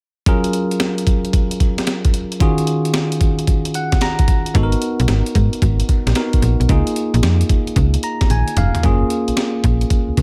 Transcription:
0.26 F#3 C#4 F4 G#4 A#4, kick, closed hi-hat
0.44 closed hi-hat
0.53 closed hi-hat
0.71 closed hi-hat
0.80 snare, closed hi-hat
0.98 closed hi-hat
1.07 kick, closed hi-hat
1.25 closed hi-hat
1.33 kick, closed hi-hat
1.51 closed hi-hat
1.60 kick, closed hi-hat
1.78 snare, closed hi-hat
1.87 snare, closed hi-hat
2.05 kick, closed hi-hat
2.14 closed hi-hat
2.32 closed hi-hat
2.40 D#3 C#4 F4 F#4 G#4, kick, closed hi-hat
2.58 closed hi-hat
2.67 closed hi-hat
2.85 closed hi-hat
2.94 snare, closed hi-hat
3.12 closed hi-hat
3.21 kick, closed hi-hat
3.39 closed hi-hat
3.47 kick, closed hi-hat
3.65 closed hi-hat
3.74 F#5, closed hi-hat
3.92 kick, snare, closed hi-hat
4.01 A#5, snare, closed hi-hat
4.19 kick, closed hi-hat
4.28 kick, closed hi-hat
4.46 closed hi-hat
4.54 G#1 B3 D#4 F#4 A4, kick, closed hi-hat
4.63 A#4
4.72 closed hi-hat
4.82 closed hi-hat
5.00 B1, closed hi-hat
5.08 G#1, snare, closed hi-hat
5.26 closed hi-hat
5.35 G#2, kick, closed hi-hat
5.53 closed hi-hat
5.62 G#1, kick, closed hi-hat
5.80 closed hi-hat
5.89 kick, closed hi-hat
6.07 A#1, snare, closed hi-hat
6.15 B3 D#4 F#4 A#4, snare, closed hi-hat
6.33 kick, closed hi-hat
6.42 A#1, closed hi-hat
6.60 B1, closed hi-hat
6.69 C#2 A#3 D#4 F4 G#4, kick, closed hi-hat
6.87 closed hi-hat
6.96 closed hi-hat
7.14 A#1, closed hi-hat
7.23 F2, snare, closed hi-hat
7.41 closed hi-hat
7.49 kick, closed hi-hat
7.67 closed hi-hat
7.76 C#2, kick, closed hi-hat
7.94 closed hi-hat
8.03 A#5, closed hi-hat
8.21 kick, snare, closed hi-hat
8.30 A#1 G#5, closed hi-hat, high tom
8.48 closed hi-hat
8.57 F1 F5, closed hi-hat, mid tom
8.75 closed hi-hat, floor tom
8.83 F#1 A#3 C#4 F4 G#4, kick, closed hi-hat
9.10 closed hi-hat
9.28 A#1, closed hi-hat
9.37 snare, closed hi-hat
9.64 A#1, kick, closed hi-hat
9.81 closed hi-hat
9.90 kick, closed hi-hat
10.09 C#2
10.17 C#2, kick, closed hi-hat

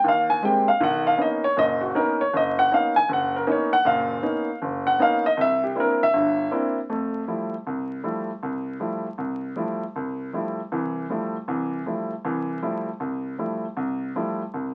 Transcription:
0.04 D#2
0.08 F5
0.30 G#5
0.43 G#3 A#3 C4 G4 G5
0.68 F5
0.80 B1 D#3 F#5
1.07 F5
1.18 A#3 B3 C#4 D#4 D#5
1.44 C#5
1.57 F#1 A#2 D#5
1.81 F#4
1.94 A#3 B3 C#4 D#4 A#4
2.21 C#5
2.33 F#1 D#5
2.59 F#5
2.71 A#3 B3 C#4 D#4 F5
2.96 G#5
3.09 F#1
3.13 F#5
3.36 A#4
3.46 A#3 B3 C#4 D#4
3.52 C#5
3.73 F#5
3.85 F#1 A#2 F5
4.22 A#3 B3 C#4 D#4
4.62 F#1
4.87 F#5
4.99 A#3 B3 C#4 D#4 F5
5.26 D#5
5.37 C2
5.41 E5
5.64 G4
5.75 A#3 C4 D4 E4
5.80 A#4
6.03 E5
6.13 G1 G2
6.51 A#3 C4 D4 E4
6.90 F2 A3
7.28 F3 G3 A3 E4
7.67 C2
8.04 F3 G3 A3 E4
8.43 C2
8.80 F3 G3 A3 E4
9.18 C2
9.56 F3 G3 A3 E4
9.96 C2
10.33 F3 G3 A3 E4
10.72 C2 E3
11.10 F3 G3 A3 E4
11.48 C2 E3
11.86 F3 G3 A3 E4
12.25 C2 E3
12.62 F3 G3 A3 E4
13.00 C2
13.38 F3 G3 A3 E4
13.77 C2
14.15 F3 G3 A3 E4
14.54 C2

